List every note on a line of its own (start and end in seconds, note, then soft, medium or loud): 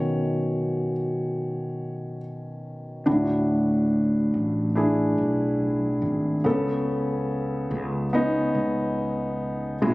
0.00 0.91 B2 soft
0.00 0.92 D#3 soft
0.00 0.92 F#3 soft
0.00 2.19 C#4 soft
0.00 2.18 C#5 medium
3.06 4.29 D2 medium
3.06 4.30 A2 medium
3.06 4.67 D4 medium
3.06 4.67 E4 medium
3.06 4.68 F#4 medium
4.34 5.14 A1 medium
4.75 6.36 D4 medium
4.75 6.37 E4 medium
4.75 6.37 G#4 medium
5.18 5.99 B1 medium
6.02 6.41 G#1 medium
6.44 7.67 C#2 medium
6.44 7.68 C#3 medium
6.44 8.05 B3 medium
6.44 8.05 C#4 medium
6.44 8.06 A4 medium
7.71 8.52 C#2 medium
8.13 9.74 B3 medium
8.13 9.74 C#4 medium
8.13 9.75 D#4 medium
8.55 9.78 C#2 medium
9.82 9.94 B1 loud
9.82 9.94 B2 medium
9.82 9.94 G#3 medium
9.82 9.94 E4 medium
9.82 9.90 F4 medium
9.90 9.94 F#4 medium